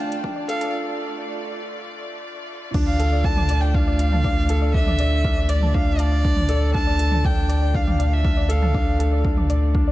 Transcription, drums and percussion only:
0.12 closed hi-hat soft
0.24 kick loud
0.49 closed hi-hat medium
0.61 closed hi-hat soft
0.61 mid tom medium
2.74 kick loud
2.74 crash loud
3.00 closed hi-hat medium
3.24 kick loud
3.37 mid tom medium
3.49 closed hi-hat medium
3.74 kick loud
3.99 closed hi-hat medium
4.12 mid tom medium
4.24 kick loud
4.49 closed hi-hat medium
4.74 kick loud
4.87 mid tom medium
4.99 closed hi-hat medium
5.24 kick loud
5.49 closed hi-hat medium
5.61 mid tom medium
5.75 kick loud
5.99 closed hi-hat medium
6.25 kick loud
6.36 mid tom medium
6.49 closed hi-hat medium
6.75 kick loud
6.99 closed hi-hat medium
7.12 mid tom medium
7.25 kick loud
7.50 closed hi-hat medium
7.75 kick loud
7.88 mid tom medium
8.00 closed hi-hat medium
8.25 kick loud
8.50 closed hi-hat medium
8.62 mid tom medium
8.74 kick loud
9.00 closed hi-hat medium
9.25 kick loud
9.37 mid tom medium
9.50 closed hi-hat medium
9.75 kick loud

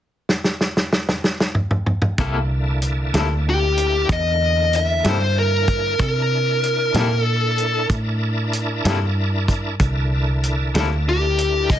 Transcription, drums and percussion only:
0.29 snare medium
0.44 snare medium
0.61 snare medium
0.77 snare medium
0.93 snare medium
1.09 snare medium
1.24 snare medium
1.40 snare medium
1.55 mid tom medium
1.71 mid tom medium
1.86 mid tom medium
2.02 mid tom medium
2.18 kick medium
2.18 closed hi-hat medium
2.82 closed hi-hat medium
3.14 snare medium
3.14 closed hi-hat medium
3.78 closed hi-hat medium
4.09 kick loud
4.09 closed hi-hat medium
4.73 closed hi-hat medium
5.04 snare loud
5.04 closed hi-hat medium
5.68 kick medium
5.68 closed hi-hat soft
5.99 kick medium
5.99 closed hi-hat medium
6.63 closed hi-hat soft
6.94 snare medium
6.94 closed hi-hat medium
7.58 closed hi-hat medium
7.89 kick medium
7.89 closed hi-hat medium
8.53 closed hi-hat medium
8.85 snare loud
8.85 closed hi-hat medium
9.48 kick medium
9.48 closed hi-hat medium
9.80 kick medium
9.80 closed hi-hat medium
10.43 closed hi-hat medium
10.75 snare medium
10.75 closed hi-hat medium
11.38 closed hi-hat medium
11.70 kick loud
11.70 closed hi-hat medium

